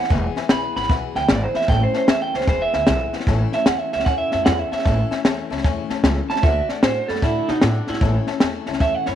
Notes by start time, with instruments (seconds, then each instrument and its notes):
Already playing: steel-string acoustic guitar E4, clean electric guitar F#5
0.00 steel-string acoustic guitar E3, snare
0.09 upright bass E1, steel-string acoustic guitar E2 B2 E3 G#3 B3 E4, upright piano B4 E5 G#5, kick, snare
0.36 steel-string acoustic guitar E3 G#3 B3 E4, upright piano B4 E5 G#5, muted upright bass stroke, snare
0.49 upright bass B1, steel-string acoustic guitar E3 G#3 B3 E4, upright piano B4 E5, clean electric guitar B5, snare, hi-hat pedal
0.75 upright bass G#1, steel-string acoustic guitar E3 G#3 B3 E4, upright piano B4 E5 F#5, clean electric guitar B5, snare
0.83 snare
0.89 upright bass B1, steel-string acoustic guitar E2 B2 E3 G#3 B3 E4, upright piano B4 E5 F#5, kick, snare
1.15 upright bass D2, steel-string acoustic guitar G#3 B3 E4, upright piano B4 E5 G#5, clean electric guitar G5, snare
1.19 steel-string acoustic guitar E3
1.29 upright bass G#1, steel-string acoustic guitar E3 G#3 B3, upright piano B4 G#5, clean electric guitar D5, snare, hi-hat pedal
1.33 steel-string acoustic guitar E4
1.43 clean electric guitar C5
1.54 steel-string acoustic guitar E3 G#3 B3 E4, upright piano B4 E5 B5, clean electric guitar E5, muted upright bass stroke, snare
1.62 snare
1.68 upright bass A1, steel-string acoustic guitar A2 E3 A3 C#4, upright piano C#5 E5 A5, clean electric guitar G5, kick, snare
1.72 steel-string acoustic guitar E4
1.83 clean electric guitar C5
1.93 steel-string acoustic guitar C#4 E4, clean electric guitar C5, upright piano C#5 E5 A5, muted upright bass stroke, snare
1.98 steel-string acoustic guitar A3
2.08 upright bass E2, steel-string acoustic guitar E3 A3 C#4 E4, upright piano C#5 E5 A5, clean electric guitar E5, snare, hi-hat pedal
2.22 clean electric guitar G5
2.33 upright bass C#2, steel-string acoustic guitar C#4 E4, clean electric guitar C5, upright piano C#5 E5 A5, snare
2.38 steel-string acoustic guitar A3, snare
2.47 upright bass E1, steel-string acoustic guitar E2 B2 E3 G#3 B3 E4, upright piano B4 E5 G#5, clean electric guitar C5, kick, snare
2.62 clean electric guitar E5
2.73 upright bass D2, steel-string acoustic guitar E3 G#3 B3 E4, upright piano B4 E5 G#5, clean electric guitar E5, snare
2.87 upright bass B1, steel-string acoustic guitar E3 G#3 B3 E4, upright piano B4 E5 G#5, snare, hi-hat pedal
3.13 steel-string acoustic guitar E3 G#3 B3 E4, upright piano B4 E5 F#5, muted upright bass stroke, snare
3.20 snare
3.27 upright bass A1, steel-string acoustic guitar A2 E3 A3 C#4 E4, upright piano C#5 E5 A5, kick, snare
3.52 steel-string acoustic guitar A3 C#4 E4, upright piano C#5 E5 A5, clean electric guitar E5, muted upright bass stroke, snare
3.66 upright bass E2, steel-string acoustic guitar E3 A3 C#4, upright piano C#5 E5 A5, clean electric guitar F#5, snare, hi-hat pedal
3.71 steel-string acoustic guitar E4
3.79 clean electric guitar E5
3.93 upright bass C#2, steel-string acoustic guitar C#4 E4, upright piano C#5 E5 F#5, clean electric guitar E5, snare
3.97 steel-string acoustic guitar A3, snare
4.05 upright bass E2, steel-string acoustic guitar A2 E3 A3, upright piano C#5 E5 G#5, clean electric guitar F#5, kick, snare
4.09 steel-string acoustic guitar C#4 E4
4.18 clean electric guitar E5
4.32 upright bass F#2, steel-string acoustic guitar C#4 E4, upright piano C#5 E5 A5, clean electric guitar E5, snare
4.36 steel-string acoustic guitar A3
4.45 upright bass E2, steel-string acoustic guitar E3 A3 C#4, upright piano C#5 E5 F#5, clean electric guitar F#5, snare, hi-hat pedal
4.49 steel-string acoustic guitar E4
4.59 clean electric guitar E5
4.71 steel-string acoustic guitar A3 C#4 E4, upright piano C#5 E5 A5, clean electric guitar E5, muted upright bass stroke, snare
4.79 snare
4.84 upright bass A1, steel-string acoustic guitar A2 E3 A3 C#4 E4, upright piano C#5 E5 A5, kick, snare
5.11 steel-string acoustic guitar A3 C#4 E4, upright piano C#5 E5 G#5, muted upright bass stroke, snare
5.25 upright bass E2, steel-string acoustic guitar E3 A3 C#4, upright piano C#5 E5 A5, snare, hi-hat pedal
5.29 steel-string acoustic guitar E4
5.50 upright bass C#2, steel-string acoustic guitar A3 C#4 E4, upright piano C#5 E5 A5, snare
5.58 snare
5.64 upright bass E2, steel-string acoustic guitar A2 E3 A3 C#4 E4, upright piano C#5 E5 G#5, kick, snare
5.90 upright bass F#2, steel-string acoustic guitar C#4 E4, upright piano C#5 E5 A5, snare
5.94 steel-string acoustic guitar A3
6.03 upright bass C#2, steel-string acoustic guitar E3 A3, upright piano C#5 E5 A5, snare, hi-hat pedal
6.07 steel-string acoustic guitar C#4 E4
6.30 steel-string acoustic guitar A3 C#4 E4, upright piano C#5 E5 B5, clean electric guitar A5, muted upright bass stroke, snare
6.36 snare
6.43 upright bass D2, steel-string acoustic guitar D3 A3 D4 F#4, upright piano D5 F#5 A5, clean electric guitar E5, kick, snare
6.69 steel-string acoustic guitar D4 F#4, clean electric guitar D5, upright piano D5 F#5 A5, muted upright bass stroke, snare
6.73 steel-string acoustic guitar A3
6.83 upright bass A2, steel-string acoustic guitar D3 A3 D4, clean electric guitar C5, upright piano D5 F#5 G#5, snare, hi-hat pedal
6.87 steel-string acoustic guitar F#4
7.08 upright bass F#2, steel-string acoustic guitar D4 F#4, clean electric guitar A4, upright piano D5 F#5 B5, snare
7.13 steel-string acoustic guitar A3, snare
7.22 upright bass A2, steel-string acoustic guitar D3 A3 D4 F#4, clean electric guitar E4, upright piano D5 F#5 A5, kick, snare
7.48 upright bass B2, steel-string acoustic guitar D4 F#4, clean electric guitar D#4, upright piano D5 F#5 A5, snare
7.52 steel-string acoustic guitar A3
7.61 upright bass A2, steel-string acoustic guitar D3 A3 D4, clean electric guitar D4, upright piano D5 F#5 A5, snare, hi-hat pedal
7.66 steel-string acoustic guitar F#4
7.87 steel-string acoustic guitar D4 F#4, clean electric guitar E4, upright piano D5 F#5 A5, muted upright bass stroke, snare
7.92 steel-string acoustic guitar A3, snare
8.01 upright bass A1, steel-string acoustic guitar A2 E3 A3 C#4, upright piano C#5 E5 A5, kick, snare
8.05 steel-string acoustic guitar E4
8.27 steel-string acoustic guitar C#4 E4, upright piano C#5 E5 A5, muted upright bass stroke, snare
8.32 steel-string acoustic guitar A3
8.40 upright bass E2, steel-string acoustic guitar E3 A3, upright piano C#5 E5 A5, snare, hi-hat pedal
8.44 steel-string acoustic guitar C#4 E4
8.66 upright bass C#2, steel-string acoustic guitar C#4 E4, upright piano C#5 E5 A5, snare
8.72 steel-string acoustic guitar A3, snare
8.80 upright bass E2, steel-string acoustic guitar A2 E3 A3, upright piano C#5 E5 A5, clean electric guitar E5, kick, snare
8.84 steel-string acoustic guitar C#4 E4
8.95 clean electric guitar F#5
9.06 upright bass F#2, steel-string acoustic guitar C#4 E4, clean electric guitar C#5, upright piano C#5 E5 B5, snare
9.11 steel-string acoustic guitar A3